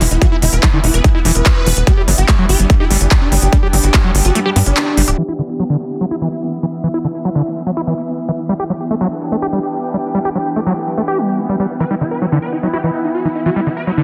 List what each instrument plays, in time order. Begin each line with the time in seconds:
Already playing: synth texture E3 B3, analog synth pad B3 E4 E5
0.01 analog synth bass E1, acid bass E3, digital synth lead E4, open hi-hat
0.11 analog synth bass E1, digital synth lead E4, closed hi-hat
0.22 acid bass E3, digital synth lead F#4, kick, closed hi-hat
0.32 acid bass E4, digital synth lead E4
0.42 analog synth bass E1, acid bass D3, digital synth lead E4, open hi-hat
0.53 analog synth bass E1, digital synth lead B4, closed hi-hat
0.63 acid bass F#3, digital synth lead E4, kick, clap, closed hi-hat
0.73 acid bass D3, digital synth lead E4
0.84 analog synth bass E1, digital synth lead E4, open hi-hat
0.94 analog synth bass E1, digital synth lead B4, closed hi-hat
1.04 acid bass F#3, digital synth lead E4, kick, closed hi-hat
1.15 acid bass E4, digital synth lead E4
1.25 analog synth bass E1, acid bass E3, digital synth lead E4, open hi-hat
1.35 analog synth bass E1, digital synth lead B4, closed hi-hat
1.46 kick, clap, closed hi-hat
1.66 analog synth bass E1, acid bass E3, open hi-hat
1.77 analog synth bass E1, closed hi-hat
1.87 acid bass G3, analog synth pad D4, digital synth lead G4, kick, closed hi-hat
1.97 digital synth lead G3, acid bass G4
2.08 analog synth bass G1, acid bass F#3, digital synth lead G3, open hi-hat
2.13 analog synth pad G4
2.18 analog synth bass G1, digital synth lead G4, closed hi-hat
2.28 digital synth lead G3, acid bass A3, kick, clap, closed hi-hat
2.39 acid bass F#3, digital synth lead G3
2.49 analog synth bass G1, digital synth lead G4, open hi-hat
2.59 analog synth bass G1, digital synth lead G3, analog synth pad G5, closed hi-hat
2.70 digital synth lead G3, acid bass A3, kick, closed hi-hat
2.80 digital synth lead E4, acid bass G4
2.90 analog synth bass G1, digital synth lead G3, acid bass G3, open hi-hat
3.01 analog synth bass G1, digital synth lead G3, closed hi-hat
3.11 digital synth lead G3, kick, clap, closed hi-hat
3.21 digital synth lead D4
3.32 analog synth bass G1, acid bass G3, digital synth lead G3, open hi-hat
3.42 analog synth bass G1, digital synth lead G3, closed hi-hat
3.53 acid bass G3, digital synth lead D4, kick, closed hi-hat
3.63 digital synth lead G3, acid bass G4
3.73 analog synth bass G1, acid bass F#3, digital synth lead G3, open hi-hat
3.84 analog synth bass G1, digital synth lead G4, closed hi-hat
3.94 digital synth lead G3, acid bass A3, kick, clap, closed hi-hat
4.04 acid bass F#3, digital synth lead G3
4.15 analog synth bass G1, digital synth lead G3, open hi-hat
4.25 analog synth bass G1, digital synth lead F#4, closed hi-hat
4.35 digital synth lead G3, acid bass A3, closed hi-hat
4.46 digital synth lead G3, acid bass G4
4.56 analog synth bass G2, digital synth lead G3, acid bass B3, open hi-hat
4.66 analog synth bass G1, digital synth lead D4, closed hi-hat
4.77 clap, closed hi-hat
4.97 analog synth bass G1, acid bass G3, open hi-hat
5.08 analog synth bass D1, acid bass G4, closed hi-hat
5.18 acid bass E3, synth texture E3 B3, analog synth pad B3
5.28 acid bass E4
5.39 acid bass D3
5.57 acid bass F#3, analog synth pad E4
5.70 acid bass D3
5.92 analog synth pad E5
6.01 acid bass F#3
6.11 acid bass E4
6.22 acid bass E3
6.63 acid bass E3
6.84 acid bass E3
6.94 acid bass E4
7.04 acid bass D3
7.25 acid bass F#3
7.35 acid bass D3
7.66 acid bass F#3
7.77 acid bass E4
7.87 acid bass E3
8.28 acid bass E3
8.49 acid bass G3, analog synth pad D4
8.59 acid bass G4
8.70 acid bass F#3
8.79 analog synth pad G5
8.84 analog synth pad G4
8.90 acid bass A3
9.01 acid bass F#3
9.32 acid bass A3
9.42 acid bass G4
9.53 acid bass G3
9.94 acid bass G3
10.15 acid bass G3
10.25 acid bass G4
10.35 acid bass F#3
10.56 acid bass A3
10.66 acid bass F#3
10.97 acid bass A3
11.08 acid bass G4
11.18 acid bass G3
11.39 acid bass A3
11.49 acid bass G3
11.59 acid bass G3
11.80 acid bass E3, analog synth pad B3, digital synth lead B4
11.88 acid bass G3, analog synth pad E4, digital synth lead E4
12.01 acid bass D3, digital synth lead E4
12.11 digital synth lead B4
12.22 acid bass F#3, digital synth lead E4
12.32 acid bass D3, digital synth lead E4
12.42 digital synth lead B4
12.48 analog synth pad E5
12.53 digital synth lead E4
12.63 acid bass F#3, digital synth lead E4
12.73 acid bass E4, digital synth lead G4
12.84 acid bass E3, digital synth lead E4
12.94 digital synth lead E4
13.04 digital synth lead E4
13.15 digital synth lead F#4
13.25 acid bass E3, digital synth lead E4
13.35 digital synth lead E4
13.46 acid bass E3, digital synth lead F#4
13.56 acid bass G3, digital synth lead E4
13.66 acid bass D3, digital synth lead E4
13.77 digital synth lead B4
13.87 acid bass F#3, digital synth lead E4
13.97 acid bass D3, digital synth lead E4